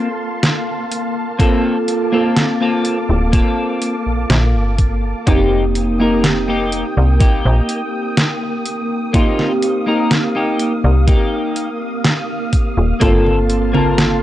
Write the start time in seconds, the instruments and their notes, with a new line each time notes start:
Already playing: synth keys A#3 C4 F4 A4, string machine A#3 F5 A5 C6
0.43 snare, closed hi-hat
0.67 muted clean electric guitar stroke
0.91 closed hi-hat
1.39 clean electric guitar A#3 C4 F4 A4, synth keys A#3 C4 F4 A4, string machine D6, kick, closed hi-hat
1.88 closed hi-hat
2.12 clean electric guitar A#3 C4 F4 A4, synth keys A#3 C4 F4 A4
2.36 snare, closed hi-hat
2.60 clean electric guitar A#3 C4 F4 A4
2.85 closed hi-hat
3.09 fm bass D1
3.32 clean electric guitar A#3 C4 F4 A4, kick, closed hi-hat
3.82 closed hi-hat
4.07 fm bass A#1
4.30 fm bass A#1, snare, closed hi-hat
4.54 fm bass G1, muted clean electric guitar stroke
4.79 kick, closed hi-hat
5.27 fm bass F1, clean electric guitar A#3 D#4 G4, synth keys A#3 C4 D#4 G4, string machine A#3 G5 D#6, kick, closed hi-hat
5.75 closed hi-hat
5.99 synth keys A#3 C4 D#4 G4, clean electric guitar A#3 D#4 A#4
6.24 snare, closed hi-hat
6.48 clean electric guitar A#3 D#4 G4
6.72 closed hi-hat
6.97 fm bass C2
7.20 fm bass A#1, clean electric guitar A#3 D#4 G4, kick, closed hi-hat
7.45 fm bass A#1
7.69 closed hi-hat
8.17 snare, closed hi-hat
8.41 muted clean electric guitar stroke
8.66 closed hi-hat
9.13 clean electric guitar A#3 D#4 F4, synth keys A#3 C4 D#4 G4, string machine F5, kick, closed hi-hat
9.39 snare
9.62 closed hi-hat
9.86 synth keys A#3 C4 D#4 G4, clean electric guitar A#3 D#4 A#4
10.11 snare, closed hi-hat
10.35 clean electric guitar A#3 D#4 G4
10.60 closed hi-hat
10.84 fm bass C2
11.07 clean electric guitar A#3 D#4 G4, kick, closed hi-hat
11.56 closed hi-hat
12.04 snare, closed hi-hat
12.29 muted clean electric guitar stroke
12.53 kick, closed hi-hat
12.77 fm bass D#1
13.00 fm bass G1, clean electric guitar A#3 C4 F4 A4, synth keys A#3 C4 F4 A4, string machine A5 C6, kick, closed hi-hat, high conga
13.26 high conga
13.50 closed hi-hat
13.73 clean electric guitar A#3 C4 F4 A#4, synth keys A#3 C4 F4 A5, high conga
13.98 snare, closed hi-hat, high conga